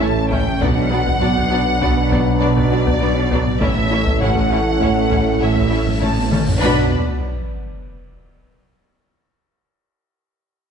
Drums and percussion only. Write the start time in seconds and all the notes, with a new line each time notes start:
0.33 taiko
0.47 taiko low-mid
0.62 taiko
1.07 taiko
1.22 taiko low-mid
1.37 taiko
1.82 taiko
2.12 taiko
2.57 taiko
2.87 taiko
3.32 taiko
3.47 taiko low-mid
3.62 taiko
4.07 taiko
4.22 taiko low-mid
4.37 taiko
4.82 taiko
5.12 taiko
5.57 taiko
5.87 taiko low-mid
6.02 taiko low-mid
6.17 taiko high
6.32 taiko mid
6.47 taiko low